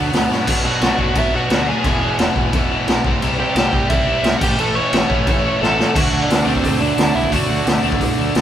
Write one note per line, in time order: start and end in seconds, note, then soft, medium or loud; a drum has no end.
0.00 0.12 D2 medium
0.00 0.12 B2 medium
0.00 0.12 F#3 medium
0.00 0.13 B3 loud
0.13 0.29 D2 medium
0.13 0.28 B2 medium
0.13 0.29 F#3 medium
0.13 0.29 B3 loud
0.13 snare loud
0.13 open hi-hat medium
0.29 0.46 G2 medium
0.29 0.45 B2 medium
0.29 0.46 F#3 medium
0.29 0.46 B3 medium
0.29 snare medium
0.46 0.68 B1 medium
0.46 1.13 B2 medium
0.46 0.63 B2 medium
0.46 0.63 F#3 medium
0.46 1.14 F#3 medium
0.46 0.65 B3 loud
0.46 1.15 B3 loud
0.46 1.16 D4 loud
0.46 kick loud
0.46 crash loud
0.46 crash medium
0.64 0.79 B2 medium
0.64 0.80 F#3 loud
0.64 0.81 B3 medium
0.64 1.13 F#4 medium
0.64 1.18 F#5 medium
0.80 0.92 B1 medium
0.80 0.97 B2 medium
0.80 0.98 F#3 loud
0.80 0.98 B3 loud
0.80 snare loud
0.80 crash medium
0.98 1.09 B1 medium
0.98 1.15 B2 medium
0.98 1.16 F#3 medium
0.98 1.16 B3 medium
0.98 kick medium
1.14 1.37 B1 medium
1.14 1.82 B2 medium
1.14 1.31 B2 medium
1.14 1.83 F#3 medium
1.14 1.32 F#3 medium
1.14 1.84 B3 medium
1.14 1.32 B3 loud
1.14 1.84 D4 medium
1.14 1.33 E4 medium
1.14 kick loud
1.14 crash medium
1.19 1.33 E5 medium
1.32 1.47 B2 medium
1.32 1.48 F#3 medium
1.32 1.48 B3 medium
1.32 1.66 F#4 medium
1.36 1.70 F#5 loud
1.48 1.71 D2 medium
1.48 1.66 B2 medium
1.48 1.66 F#3 loud
1.48 1.67 B3 medium
1.48 snare loud
1.48 crash medium
1.67 1.83 B2 medium
1.67 1.83 F#3 medium
1.67 1.84 B3 medium
1.67 2.16 G#4 medium
1.67 2.16 G#5 medium
1.83 2.05 E1 medium
1.83 2.00 E2 medium
1.83 2.01 B2 medium
1.83 2.51 E3 medium
1.83 2.02 E3 medium
1.83 2.51 G#3 medium
1.83 2.53 B3 loud
1.83 2.55 E4 loud
1.83 kick loud
1.83 crash medium
2.01 2.18 E2 medium
2.01 2.19 B2 medium
2.01 2.20 E3 loud
2.18 2.29 E1 medium
2.18 2.35 E2 medium
2.18 2.36 B2 loud
2.18 2.37 E3 loud
2.18 snare loud
2.18 crash medium
2.35 2.46 E1 medium
2.35 2.52 E2 medium
2.35 2.53 B2 medium
2.35 2.55 E3 medium
2.35 kick medium
2.52 2.74 E1 medium
2.52 2.69 E2 loud
2.52 2.70 B2 loud
2.52 3.04 E3 medium
2.52 2.71 E3 loud
2.52 3.03 G#3 medium
2.52 3.04 B3 loud
2.52 3.06 E4 medium
2.52 kick loud
2.52 crash medium
2.70 2.86 E2 medium
2.70 2.87 B2 medium
2.70 2.88 E3 medium
2.88 2.98 B1 medium
2.88 3.03 E2 medium
2.88 3.04 B2 loud
2.88 3.05 E3 medium
2.88 snare loud
2.88 crash medium
3.03 3.15 C2 medium
3.03 3.71 C3 medium
3.03 3.20 C3 medium
3.03 3.74 E3 medium
3.03 3.72 G3 loud
3.03 3.21 G3 loud
3.03 3.71 C4 loud
3.03 3.22 C4 loud
3.03 kick loud
3.07 3.71 E4 loud
3.21 3.42 C2 medium
3.21 3.38 C3 medium
3.21 3.38 G3 medium
3.21 3.39 C4 medium
3.21 crash medium
3.39 3.54 C3 medium
3.39 3.55 G3 medium
3.39 3.56 C4 loud
3.39 3.87 G4 medium
3.39 3.89 G5 loud
3.55 3.66 C2 medium
3.55 3.70 C3 medium
3.55 3.71 G3 loud
3.55 3.72 C4 loud
3.55 snare loud
3.55 crash medium
3.71 3.83 C2 loud
3.71 3.88 C3 loud
3.71 4.39 C3 medium
3.71 4.39 E3 medium
3.71 3.89 G3 loud
3.71 4.41 G3 medium
3.71 4.40 C4 medium
3.71 3.90 C4 loud
3.71 4.40 E4 medium
3.71 kick medium
3.89 4.11 C2 medium
3.89 4.05 C3 medium
3.89 4.06 G3 loud
3.89 4.06 C4 loud
3.89 4.33 E4 medium
3.89 4.38 E5 medium
3.89 kick loud
3.89 crash medium
4.06 4.22 C3 medium
4.06 4.23 G3 medium
4.06 4.23 C4 loud
4.23 4.34 C2 medium
4.23 4.40 C3 medium
4.23 4.40 G3 loud
4.23 4.40 C4 loud
4.23 snare loud
4.23 crash medium
4.38 4.52 A1 medium
4.38 5.08 A2 medium
4.38 4.57 A2 loud
4.38 5.08 E3 loud
4.38 4.58 E3 loud
4.38 5.09 A3 loud
4.38 4.42 F#5 medium
4.38 kick loud
4.38 crash medium
4.42 4.58 A3 loud
4.42 5.09 C#4 loud
4.42 5.07 E4 loud
4.42 4.58 G4 medium
4.42 4.60 G5 medium
4.58 4.79 A1 loud
4.58 4.73 A2 medium
4.58 4.74 E3 medium
4.58 4.75 A3 loud
4.58 4.75 A4 medium
4.58 4.76 A5 loud
4.58 crash medium
4.75 4.90 A2 medium
4.75 4.91 E3 medium
4.75 4.92 A3 medium
4.75 5.75 C#5 medium
4.75 5.74 C#6 loud
4.92 5.03 A1 medium
4.92 5.07 A2 medium
4.92 5.08 E3 loud
4.92 5.09 A3 loud
4.92 snare loud
4.92 crash medium
5.08 5.20 A1 medium
5.08 5.25 A2 loud
5.08 5.26 E3 loud
5.08 5.78 E3 medium
5.08 5.27 A3 loud
5.08 5.78 A3 medium
5.08 5.77 C#4 medium
5.08 5.77 E4 medium
5.08 kick medium
5.13 5.79 A2 medium
5.26 5.48 A1 medium
5.26 5.42 A2 loud
5.26 5.43 E3 loud
5.26 5.43 A3 loud
5.26 kick loud
5.26 crash medium
5.43 5.59 A2 medium
5.43 5.59 E3 medium
5.43 5.60 A3 medium
5.60 5.82 A1 medium
5.60 5.76 A2 medium
5.60 5.77 E3 medium
5.60 5.78 A3 loud
5.60 5.93 A4 medium
5.60 snare medium
5.64 5.97 A5 loud
5.77 5.93 A2 medium
5.77 5.94 E3 medium
5.77 5.95 A3 medium
5.77 snare medium
5.94 6.06 D2 loud
5.94 6.48 D3 medium
5.94 6.28 D3 loud
5.94 6.29 F#3 loud
5.94 6.29 A3 loud
5.94 6.46 A3 medium
5.94 6.30 D4 loud
5.94 6.20 F#4 medium
5.94 6.23 F#5 loud
5.94 kick loud
5.94 crash loud
5.98 6.44 D4 medium
6.12 6.23 D2 medium
6.22 6.46 D4 medium
6.22 6.46 D5 medium
6.28 6.40 D2 loud
6.28 6.45 D3 medium
6.28 6.46 F#3 medium
6.28 6.46 A3 medium
6.28 6.47 D4 loud
6.28 snare loud
6.28 open hi-hat medium
6.44 6.57 D2 medium
6.44 6.62 D3 medium
6.44 6.62 F#3 medium
6.44 7.31 A3 medium
6.44 6.62 A3 medium
6.44 6.79 C4 medium
6.44 7.30 D4 medium
6.44 6.63 D4 loud
6.44 6.81 C5 medium
6.48 7.29 D3 medium
6.55 kick medium
6.63 6.75 D2 medium
6.63 6.95 D3 loud
6.63 6.96 F#3 loud
6.63 6.96 A3 loud
6.63 6.97 D4 loud
6.63 kick loud
6.63 open hi-hat medium
6.80 6.91 D2 medium
6.80 7.13 D4 medium
6.80 7.17 D5 medium
6.97 7.08 D2 medium
6.97 7.13 D3 medium
6.97 7.13 F#3 medium
6.97 7.14 A3 loud
6.97 7.15 D4 loud
6.97 snare loud
6.97 open hi-hat medium
7.14 7.26 C2 medium
7.14 7.30 D3 medium
7.14 7.31 F#3 medium
7.14 7.31 A3 medium
7.14 7.32 D4 medium
7.14 7.31 E4 medium
7.14 7.32 E5 medium
7.24 kick medium
7.31 7.43 D2 medium
7.31 7.82 D3 medium
7.31 7.65 D3 medium
7.31 7.66 F#3 loud
7.31 7.66 A3 loud
7.31 7.83 A3 medium
7.31 7.67 D4 loud
7.31 7.82 D4 loud
7.31 7.65 F#4 medium
7.31 7.66 F#5 medium
7.31 kick loud
7.31 open hi-hat medium
7.49 7.60 D2 medium
7.66 7.77 D2 medium
7.66 7.81 D3 medium
7.66 7.82 F#3 medium
7.66 7.83 A3 medium
7.66 7.83 D4 loud
7.66 snare loud
7.66 open hi-hat medium
7.83 7.94 D2 loud
7.83 7.99 D3 medium
7.83 8.41 D3 medium
7.83 7.99 F#3 loud
7.83 8.00 A3 loud
7.83 8.41 A3 medium
7.83 8.41 D4 loud
7.83 8.00 D4 medium
7.92 kick medium
8.00 8.11 C2 medium
8.00 8.34 D3 loud
8.00 8.34 F#3 loud
8.00 8.35 A3 loud
8.00 8.35 D4 loud
8.00 kick medium
8.00 open hi-hat medium
8.19 8.29 D2 medium
8.35 8.41 D2 medium
8.35 8.41 D3 medium
8.35 8.41 F#3 medium
8.35 8.41 A3 medium
8.35 8.41 D4 medium
8.35 snare loud
8.35 open hi-hat medium